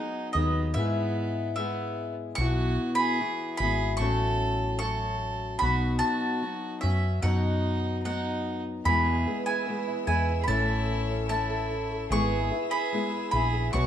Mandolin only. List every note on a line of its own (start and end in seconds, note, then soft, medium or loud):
0.00 0.36 F#5 medium
0.33 0.73 D#5 medium
0.74 1.55 E5 medium
1.56 2.13 E5 medium
2.35 2.95 C#6 loud
2.95 3.56 B5 loud
3.57 3.96 B5 loud
3.97 4.78 C#6 loud
4.79 5.58 C#6 loud
5.59 5.98 B5 loud
5.99 6.80 A5 medium
6.81 7.22 E5 medium
7.22 8.04 F#5 medium
8.05 8.62 F#5 medium
8.85 9.46 B5 loud
9.46 10.06 G#5 medium
10.07 10.39 G#5 medium
10.44 10.47 B5 medium
10.48 11.28 A5 medium
11.29 12.07 A5 medium
12.12 12.71 C#6 loud
12.71 13.30 B5 medium
13.31 13.73 B5 medium
13.73 13.87 C#6 medium